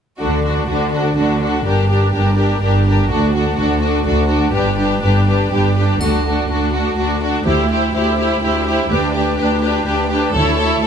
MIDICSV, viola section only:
0, 0, Header, 1, 2, 480
1, 0, Start_track
1, 0, Key_signature, 2, "major"
1, 0, Tempo, 482315
1, 213, Time_signature, 3, 2, 24, 8
1, 10817, End_track
2, 0, Start_track
2, 0, Title_t, "Viola section"
2, 0, Program_c, 0, 48
2, 211, Note_on_c, 0, 62, 27
2, 440, Note_off_c, 0, 62, 0
2, 452, Note_on_c, 0, 62, 24
2, 685, Note_off_c, 0, 62, 0
2, 697, Note_on_c, 0, 62, 27
2, 932, Note_off_c, 0, 62, 0
2, 949, Note_on_c, 0, 62, 26
2, 1167, Note_off_c, 0, 62, 0
2, 1179, Note_on_c, 0, 62, 24
2, 1395, Note_off_c, 0, 62, 0
2, 1407, Note_on_c, 0, 62, 25
2, 1641, Note_off_c, 0, 62, 0
2, 1653, Note_on_c, 0, 62, 29
2, 1887, Note_off_c, 0, 62, 0
2, 1899, Note_on_c, 0, 62, 26
2, 2128, Note_off_c, 0, 62, 0
2, 2139, Note_on_c, 0, 62, 28
2, 2357, Note_off_c, 0, 62, 0
2, 2369, Note_on_c, 0, 62, 27
2, 2607, Note_off_c, 0, 62, 0
2, 2620, Note_on_c, 0, 62, 29
2, 2852, Note_off_c, 0, 62, 0
2, 2872, Note_on_c, 0, 62, 28
2, 3088, Note_off_c, 0, 62, 0
2, 3100, Note_on_c, 0, 62, 31
2, 3331, Note_off_c, 0, 62, 0
2, 3348, Note_on_c, 0, 62, 31
2, 3573, Note_off_c, 0, 62, 0
2, 3588, Note_on_c, 0, 62, 33
2, 3805, Note_off_c, 0, 62, 0
2, 3816, Note_on_c, 0, 62, 32
2, 4034, Note_off_c, 0, 62, 0
2, 4046, Note_on_c, 0, 62, 33
2, 4257, Note_off_c, 0, 62, 0
2, 4269, Note_on_c, 0, 62, 33
2, 4507, Note_off_c, 0, 62, 0
2, 4519, Note_on_c, 0, 62, 37
2, 4752, Note_off_c, 0, 62, 0
2, 4770, Note_on_c, 0, 62, 32
2, 4999, Note_off_c, 0, 62, 0
2, 5018, Note_on_c, 0, 62, 36
2, 5245, Note_off_c, 0, 62, 0
2, 5271, Note_on_c, 0, 62, 34
2, 5493, Note_off_c, 0, 62, 0
2, 5504, Note_on_c, 0, 62, 32
2, 5734, Note_off_c, 0, 62, 0
2, 5758, Note_on_c, 0, 62, 30
2, 5985, Note_off_c, 0, 62, 0
2, 6009, Note_on_c, 0, 62, 30
2, 6230, Note_off_c, 0, 62, 0
2, 6267, Note_on_c, 0, 62, 29
2, 6479, Note_off_c, 0, 62, 0
2, 6492, Note_on_c, 0, 62, 30
2, 6712, Note_off_c, 0, 62, 0
2, 6750, Note_on_c, 0, 62, 29
2, 6958, Note_off_c, 0, 62, 0
2, 6970, Note_on_c, 0, 62, 32
2, 7186, Note_off_c, 0, 62, 0
2, 7198, Note_on_c, 0, 62, 32
2, 7425, Note_off_c, 0, 62, 0
2, 7434, Note_on_c, 0, 64, 34
2, 7663, Note_off_c, 0, 64, 0
2, 7687, Note_on_c, 0, 64, 31
2, 7903, Note_off_c, 0, 64, 0
2, 7915, Note_on_c, 0, 64, 35
2, 8145, Note_off_c, 0, 64, 0
2, 8158, Note_on_c, 0, 64, 34
2, 8386, Note_off_c, 0, 64, 0
2, 8399, Note_on_c, 0, 64, 36
2, 8627, Note_off_c, 0, 64, 0
2, 8653, Note_on_c, 0, 64, 35
2, 8873, Note_off_c, 0, 64, 0
2, 8875, Note_on_c, 0, 62, 39
2, 9103, Note_off_c, 0, 62, 0
2, 9127, Note_on_c, 0, 62, 35
2, 9348, Note_off_c, 0, 62, 0
2, 9358, Note_on_c, 0, 62, 41
2, 9582, Note_off_c, 0, 62, 0
2, 9598, Note_on_c, 0, 62, 37
2, 9822, Note_off_c, 0, 62, 0
2, 9838, Note_on_c, 0, 62, 39
2, 10061, Note_off_c, 0, 62, 0
2, 10082, Note_on_c, 0, 62, 37
2, 10302, Note_off_c, 0, 62, 0
2, 10321, Note_on_c, 0, 64, 43
2, 10541, Note_off_c, 0, 64, 0
2, 10585, Note_on_c, 0, 64, 39
2, 10793, Note_off_c, 0, 64, 0
2, 10817, End_track
0, 0, End_of_file